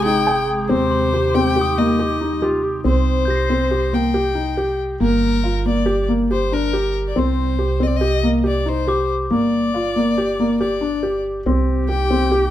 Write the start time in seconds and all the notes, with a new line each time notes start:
Already playing: G#1 C3 G#3 G#4 G5
0.05 D#4 G5
0.27 G5
0.69 D#2 G3 C4 D#4 G4 C5
0.91 C6
1.14 G4
1.35 C4 G5
1.56 G4
1.61 D#6
1.78 A#3 D#5
1.99 G4
2.21 D#4
2.42 F4 G4
2.64 G4
2.84 C2 C4 C5
3.25 G4 G6
3.30 A#6
3.35 C7
3.50 C4
3.71 G4
3.93 A#3 G5
4.14 G4
4.35 D#4
4.57 G4
5.00 G1 A#3 A#4
5.44 F4
5.66 A#3 D5
5.86 G4
6.08 A#3
6.31 G4 C5
6.52 D4 A#4
6.73 G4
7.08 D5
7.16 C2 C4 C5
7.59 G4
7.80 C4 D#5
7.88 D5
7.97 D#5
8.01 G4
8.23 A#3
8.44 G4 D5
8.66 D#4 C5
8.87 G4 D6
9.30 G1 A#3 D5
9.74 F4
9.96 A#3
10.18 G4
10.40 A#3
10.61 G4 D5
10.81 D4
11.03 G4
11.45 C2 C3 A#3 C4 D#4 G4
11.89 G4 G5
12.11 C4
12.31 G4